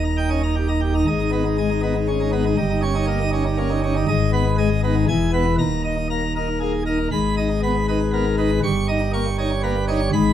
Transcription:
pipe organ
Already playing: D#1 D#2
0.05 A#5
0.17 D#4 G5
0.30 C#4 D#5
0.43 D#4 A#5
0.56 G4
0.68 D#4 A#5
0.81 G4
0.95 D#4 A#5
1.07 G#1 G#2 D#5
1.20 D#4
1.32 B3 D#4
1.45 D#4
1.58 G#3 D#5
1.70 D#4
1.83 B3 D#4
1.95 D#4
2.08 G#3 C#4
2.20 D#4
2.32 B3 D#4
2.46 D#4
2.58 G1 G2 D#5
2.70 D#4
2.82 C#4 C#5
2.95 D#4
3.07 A#3 D#5
3.21 D#4
3.32 C#4 D#4
3.46 D#4
3.58 A#3 C#4
3.70 D#4
3.83 C#4 D#4
3.96 D#4
4.08 G#1 G#2 D#5
4.33 B3 B4
4.58 G#3 D#5
4.84 B3 D#4
5.08 E1 E2 G#5
5.33 B3 B4
5.59 D#1 D#2 A#5
5.84 D#4 D#5
6.10 A#3 A#5
6.36 D#4 A#4
6.60 A#3 G#4
6.86 D#4 A#4
7.12 G#1 G#2 B5
7.37 D#4 D#5
7.63 B3 B5
7.88 D#4 B4
8.13 B3 A#4
8.38 D#4 B4
8.63 G1 G2 C#6
8.88 D#4 D#5
9.13 A#3 C#6
9.38 D#4 C#5
9.63 A#3 B4
9.88 D#4 C#5
10.13 G#1 G#2 B5

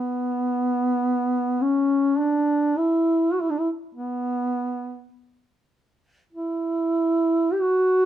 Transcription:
duduk
Already playing: B3
1.62 C#4
2.19 D4
2.78 E4
3.33 F#4
3.41 E4
3.50 D4
3.59 E4
3.95 B3
6.33 E4
7.53 G4
7.61 F#4

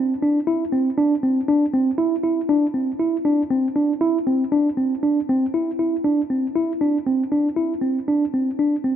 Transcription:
tine electric piano
Already playing: C4
0.22 D4
0.47 E4
0.72 C4
0.98 D4
1.23 C4
1.48 D4
1.74 C4
1.98 E4
2.24 E4
2.49 D4
2.74 C4
2.99 E4
3.25 D4
3.50 C4
3.76 D4
4.01 E4
4.27 C4
4.52 D4
4.77 C4
5.03 D4
5.29 C4
5.54 E4
5.79 E4
6.05 D4
6.30 C4
6.56 E4
6.81 D4
7.06 C4
7.32 D4
7.57 E4
7.82 C4
8.08 D4
8.34 C4
8.59 D4
8.84 C4

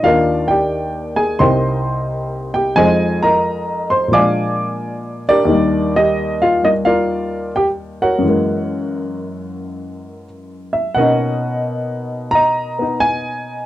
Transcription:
grand piano
0.03 D#2 D#3 A#3 F4 A#4 D5 F5
0.08 D4
0.48 G4 D5 G5
1.16 G#4 G#5
1.39 C2 C3 A#3 D#4 C5 D#5 G5 C6
2.54 G4 G5
2.76 F2 F3 G#3 D#4 G#4 C5 D#5 G#5
3.23 A#4 D#5 A#5
3.90 C5 C6
4.08 A#2 F3
4.13 G#3 D5 F5 G#5 D6
4.19 D4
5.29 D4 G4 A#4 D5
5.45 D#2 D#3
5.52 G3
5.96 D#4 G4 D#5
6.42 F4 F5
6.63 G3 A#3 D#4 D#5
6.85 F4 A#4 D5 F5
7.56 G4 G5
8.02 F#4 A#4 C#5 F#5
8.19 F#2 E3
8.25 G#3 A#3
10.73 E5
10.95 B2 A#3 D#5 F#5
10.99 C#4 D#4
12.31 A#5
12.35 D#5
12.79 B3 D#4
13.00 G#5

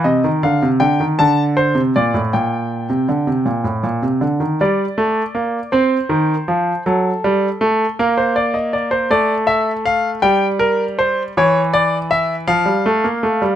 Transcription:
grand piano
0.04 C3 D#5
0.24 D#3
0.43 D3 F5
0.62 C3
0.80 D3 G5
1.00 D#3
1.19 D3 A5
1.57 C5
1.75 C3
1.96 A#2 D5
2.14 A2
2.33 A#2 G5
2.90 C3
3.09 D3
3.27 C3
3.45 A#2
3.64 A2
3.83 A#2
4.02 C3
4.21 D3
4.40 D#3
4.61 G3 D5
4.98 A3
5.35 A#3
5.72 C4 C5
6.09 D#3
6.48 F3
6.86 F#3 A4
7.24 G3
7.61 A3
7.99 A#3 A#4
8.18 C5
8.36 D5
8.54 D#5
8.73 D5
8.91 C5
9.10 A3 D5
9.47 E5
9.86 F5
10.22 G3 G5
10.59 A#4
10.99 C5
11.37 E3 C#5
11.74 D5
12.11 E5
12.48 F3 F5
12.66 G3
12.86 A3
13.04 A#3
13.23 A3
13.42 G3

